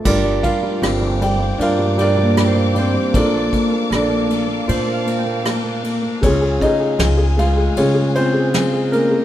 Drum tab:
CC |x-------|--------|--------|
RD |-xxxxxxx|xxxxxxxx|xxxxxxxx|
SD |--r---r-|--r---r-|--o---o-|
BD |oo------|oo------|oo------|